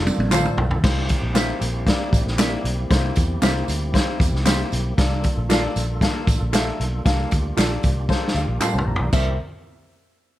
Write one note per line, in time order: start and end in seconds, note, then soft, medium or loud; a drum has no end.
0.00 0.80 A#3 medium
0.00 0.80 D4 medium
0.00 0.80 F4 medium
0.00 0.80 A4 medium
0.00 0.54 D5 medium
0.07 high tom medium
0.07 tambourine medium
0.18 0.48 A#1 medium
0.18 high tom medium
0.31 0.60 A#3 medium
0.31 0.43 F4 medium
0.31 0.61 F4 medium
0.31 0.43 A4 medium
0.31 0.61 A4 medium
0.31 0.61 C5 loud
0.31 0.44 D5 medium
0.31 0.44 F5 loud
0.31 clap medium
0.31 mid tom medium
0.31 tambourine medium
0.45 mid tom medium
0.57 0.77 B1 medium
0.57 floor tom loud
0.71 floor tom medium
0.83 1.13 C2 loud
0.83 1.12 A#3 medium
0.83 9.08 A#3 medium
0.83 4.94 C4 medium
0.83 4.94 E4 medium
0.83 1.12 E4 medium
0.83 4.94 G4 medium
0.83 1.12 C5 loud
0.83 kick loud
0.83 snare loud
0.83 crash loud
0.83 tambourine medium
1.09 kick medium
1.09 closed hi-hat medium
1.09 tambourine medium
1.22 1.51 A#1 medium
1.34 1.64 A#3 medium
1.34 1.47 C4 medium
1.34 1.64 E4 medium
1.34 1.47 G4 medium
1.34 1.47 A#4 medium
1.34 1.64 C5 loud
1.34 1.47 E5 medium
1.34 snare loud
1.34 clap loud
1.34 closed hi-hat medium
1.34 tambourine loud
1.61 1.90 A#1 medium
1.61 closed hi-hat medium
1.61 tambourine medium
1.86 2.15 A#3 medium
1.86 2.16 E4 medium
1.86 2.16 D5 loud
1.86 kick medium
1.86 snare loud
1.86 closed hi-hat medium
2.13 2.23 A1 medium
2.13 kick loud
2.13 closed hi-hat medium
2.13 tambourine medium
2.26 2.55 A#1 medium
2.26 snare soft
2.38 2.67 A#3 medium
2.38 2.50 C4 medium
2.38 2.67 E4 medium
2.38 2.51 G4 medium
2.38 2.51 A#4 loud
2.38 2.68 D5 loud
2.38 2.51 E5 medium
2.38 snare loud
2.38 clap medium
2.38 closed hi-hat loud
2.38 tambourine medium
2.64 2.84 B1 medium
2.64 closed hi-hat medium
2.90 3.10 C2 loud
2.90 3.19 A#3 medium
2.90 3.19 E4 medium
2.90 3.19 C5 loud
2.90 kick loud
2.90 snare loud
2.90 closed hi-hat loud
2.90 tambourine medium
3.16 3.36 E2 medium
3.16 kick medium
3.16 closed hi-hat medium
3.16 tambourine medium
3.42 3.62 C2 medium
3.42 3.71 A#3 medium
3.42 3.54 C4 medium
3.42 3.71 E4 medium
3.42 3.54 G4 medium
3.42 3.54 A#4 loud
3.42 3.71 C5 loud
3.42 3.55 E5 loud
3.42 snare loud
3.42 clap loud
3.42 closed hi-hat medium
3.42 tambourine loud
3.68 3.97 D2 medium
3.68 closed hi-hat medium
3.68 tambourine medium
3.94 4.23 A#3 medium
3.94 4.23 E4 medium
3.94 4.23 C5 loud
3.94 kick medium
3.94 snare loud
3.94 closed hi-hat medium
3.94 tambourine soft
4.20 4.30 E2 loud
4.20 kick loud
4.20 closed hi-hat medium
4.20 tambourine medium
4.33 4.62 C2 medium
4.33 snare soft
4.45 4.74 A#3 medium
4.45 4.57 C4 medium
4.45 4.75 E4 medium
4.45 4.58 G4 medium
4.45 4.58 A#4 medium
4.45 4.75 C5 loud
4.45 4.58 E5 medium
4.45 snare loud
4.45 clap medium
4.45 closed hi-hat loud
4.45 tambourine medium
4.72 4.92 B1 medium
4.72 closed hi-hat medium
4.72 tambourine soft
4.97 5.27 C2 loud
4.97 5.26 A#3 medium
4.97 9.09 D4 medium
4.97 9.09 F4 medium
4.97 5.27 A4 medium
4.97 7.03 A4 medium
4.97 5.27 D5 loud
4.97 kick loud
4.97 snare loud
4.97 closed hi-hat loud
4.97 tambourine medium
5.24 kick medium
5.24 closed hi-hat medium
5.24 tambourine medium
5.37 5.66 A#1 loud
5.49 5.78 A#3 medium
5.49 5.61 F4 medium
5.49 5.78 A4 medium
5.49 5.62 A4 medium
5.49 5.79 D5 loud
5.49 5.62 D5 medium
5.49 5.62 F5 loud
5.49 snare loud
5.49 clap medium
5.49 closed hi-hat medium
5.49 tambourine loud
5.76 6.05 A#1 medium
5.76 closed hi-hat medium
5.76 tambourine medium
6.01 6.30 A#3 medium
6.01 6.30 A4 medium
6.01 6.31 F5 loud
6.01 kick medium
6.01 snare loud
6.01 closed hi-hat medium
6.01 tambourine soft
6.27 6.37 A1 medium
6.27 kick medium
6.27 closed hi-hat medium
6.27 tambourine medium
6.41 6.70 A#1 medium
6.53 6.82 A#3 medium
6.53 6.65 F4 medium
6.53 6.65 A4 medium
6.53 6.82 A4 medium
6.53 6.65 D5 medium
6.53 6.82 E5 loud
6.53 6.66 F5 medium
6.53 snare loud
6.53 clap medium
6.53 closed hi-hat loud
6.53 tambourine medium
6.80 6.99 B1 medium
6.80 closed hi-hat medium
7.05 7.25 C2 medium
7.05 7.34 A#3 medium
7.05 9.11 G4 medium
7.05 7.34 A4 medium
7.05 7.34 F5 loud
7.05 kick loud
7.05 snare loud
7.05 closed hi-hat medium
7.05 tambourine soft
7.31 7.51 D2 medium
7.31 kick medium
7.31 closed hi-hat medium
7.31 tambourine medium
7.57 7.77 A#1 medium
7.57 7.85 A#3 medium
7.57 7.69 F4 medium
7.57 7.86 A4 medium
7.57 7.69 A4 medium
7.57 7.86 D5 medium
7.57 7.69 D5 medium
7.57 7.69 F5 medium
7.57 snare loud
7.57 clap medium
7.57 closed hi-hat medium
7.57 tambourine medium
7.83 8.12 C2 medium
7.83 kick loud
7.83 closed hi-hat medium
7.83 tambourine medium
8.09 8.37 A#3 medium
8.09 8.38 A4 medium
8.09 8.38 C5 loud
8.09 kick medium
8.09 snare medium
8.09 tambourine soft
8.27 snare medium
8.34 8.44 D2 loud
8.34 8.59 F5 medium
8.34 tambourine medium
8.48 8.57 A#1 medium
8.60 8.72 F4 medium
8.60 8.73 A4 medium
8.60 8.74 A#4 medium
8.60 8.73 D5 medium
8.60 8.73 F5 medium
8.60 8.74 G5 medium
8.60 8.73 A5 medium
8.60 clap loud
8.60 mid tom medium
8.60 tambourine medium
8.74 8.83 C2 medium
8.74 8.99 C5 medium
8.74 8.98 A5 medium
8.78 floor tom medium
8.86 8.96 A#1 medium
8.86 8.99 A#5 medium
8.96 9.09 B1 medium
8.96 floor tom medium
9.00 9.25 D5 medium
9.00 9.24 A#5 medium
9.12 9.37 C2 loud
9.12 9.37 A#3 medium
9.12 9.37 C4 medium
9.12 9.28 C4 medium
9.12 9.36 E4 medium
9.12 9.37 G4 medium
9.12 9.28 G4 medium
9.12 9.37 A#4 medium
9.12 9.29 A#4 medium
9.12 9.37 E5 medium
9.12 9.29 E5 medium
9.12 kick loud
9.12 crash medium
9.12 tambourine medium